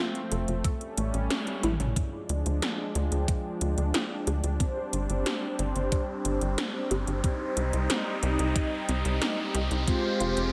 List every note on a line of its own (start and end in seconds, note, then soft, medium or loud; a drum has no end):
0.00 0.63 F3 medium
0.00 1.94 A3 medium
0.00 0.63 C4 medium
0.00 0.30 F4 medium
0.15 closed hi-hat soft
0.31 0.46 F1 medium
0.31 0.55 A4 medium
0.31 closed hi-hat medium
0.48 0.63 F1 medium
0.48 closed hi-hat medium
0.64 1.95 G3 medium
0.64 1.95 C#4 medium
0.64 0.88 A4 medium
0.64 kick loud
0.64 closed hi-hat medium
0.81 closed hi-hat soft
0.97 1.12 A1 medium
0.97 1.29 A3 medium
0.97 closed hi-hat medium
1.14 1.29 A1 medium
1.14 closed hi-hat soft
1.30 1.54 C#4 loud
1.30 snare loud
1.30 closed hi-hat medium
1.30 high tom medium
1.47 closed hi-hat soft
1.47 high tom medium
1.63 1.78 A1 loud
1.63 1.87 E4 loud
1.63 closed hi-hat medium
1.63 mid tom medium
1.80 1.95 A1 medium
1.80 closed hi-hat medium
1.80 mid tom medium
1.96 4.57 F3 medium
1.96 4.57 G#3 medium
1.96 7.20 D4 medium
1.96 2.19 D4 medium
1.96 2.91 F4 medium
1.96 2.91 G#4 medium
1.96 2.91 D5 loud
1.96 kick loud
1.96 closed hi-hat medium
1.96 riser medium
2.29 2.44 D2 loud
2.29 2.43 F4 medium
2.29 closed hi-hat medium
2.46 2.61 D2 medium
2.46 closed hi-hat medium
2.62 2.94 G#4 medium
2.62 snare loud
2.62 closed hi-hat medium
2.95 3.10 D2 loud
2.95 4.56 F4 medium
2.95 4.56 G#4 medium
2.95 3.18 D5 medium
2.95 4.56 G5 loud
2.95 closed hi-hat medium
3.12 3.27 D2 medium
3.12 closed hi-hat medium
3.28 3.51 F5 medium
3.28 kick loud
3.28 closed hi-hat medium
3.61 3.76 D2 medium
3.61 3.92 D4 medium
3.61 closed hi-hat medium
3.78 3.93 D2 medium
3.78 closed hi-hat medium
3.94 4.17 F4 loud
3.94 snare loud
3.94 closed hi-hat medium
4.27 4.42 D2 medium
4.27 4.50 G#4 loud
4.27 closed hi-hat medium
4.44 4.58 D2 medium
4.44 closed hi-hat medium
4.60 9.84 G3 medium
4.60 4.83 C4 medium
4.60 9.84 C4 medium
4.60 5.55 D4 medium
4.60 5.55 G4 medium
4.60 5.55 C5 loud
4.60 kick loud
4.60 closed hi-hat medium
4.93 5.08 G1 medium
4.93 5.07 D4 medium
4.93 closed hi-hat medium
5.09 5.24 G1 medium
5.09 closed hi-hat medium
5.26 5.57 G4 medium
5.26 snare loud
5.26 closed hi-hat medium
5.59 5.74 G1 medium
5.59 7.20 D4 loud
5.59 7.20 G4 medium
5.59 7.20 C5 loud
5.59 5.82 C5 medium
5.59 closed hi-hat medium
5.76 5.90 G1 medium
5.76 closed hi-hat medium
5.92 6.15 D5 medium
5.92 kick loud
5.92 closed hi-hat medium
6.25 6.40 G1 medium
6.25 6.56 C4 medium
6.25 closed hi-hat medium
6.41 6.56 G1 medium
6.41 closed hi-hat medium
6.58 6.81 D4 loud
6.58 snare loud
6.58 closed hi-hat medium
6.91 7.06 G1 loud
6.91 7.14 G4 loud
6.91 closed hi-hat medium
7.07 7.22 G1 medium
7.07 closed hi-hat medium
7.24 7.47 C4 medium
7.24 8.19 D#4 medium
7.24 9.85 D#4 medium
7.24 8.19 G4 medium
7.24 8.19 C5 loud
7.24 kick loud
7.24 closed hi-hat medium
7.57 7.72 C2 loud
7.57 7.71 D#4 medium
7.57 closed hi-hat medium
7.73 7.88 C2 medium
7.73 closed hi-hat medium
7.90 8.21 G4 medium
7.90 snare loud
7.90 closed hi-hat medium
8.23 8.38 C2 medium
8.23 9.84 D#4 medium
8.23 9.84 G4 medium
8.23 8.46 C5 medium
8.23 9.84 D#5 loud
8.23 closed hi-hat medium
8.39 8.54 C2 medium
8.39 closed hi-hat medium
8.56 8.79 D#5 medium
8.56 kick loud
8.56 closed hi-hat medium
8.89 9.03 C2 medium
8.89 9.20 C4 medium
8.89 closed hi-hat medium
9.05 9.20 C2 medium
9.05 closed hi-hat medium
9.22 9.45 D#4 loud
9.22 snare loud
9.22 closed hi-hat medium
9.55 9.69 C2 loud
9.55 9.78 G4 loud
9.55 closed hi-hat medium
9.71 9.86 C2 medium
9.71 closed hi-hat medium
9.87 10.52 G#3 loud
9.87 10.52 G#3 medium
9.87 10.52 C4 medium
9.87 10.11 C4 medium
9.87 10.52 F4 medium
9.87 10.52 G4 medium
9.87 10.52 C5 loud
9.87 kick loud
9.87 closed hi-hat medium
10.20 10.35 F1 loud
10.20 10.34 F4 medium
10.20 closed hi-hat medium
10.37 10.52 F1 medium
10.37 closed hi-hat medium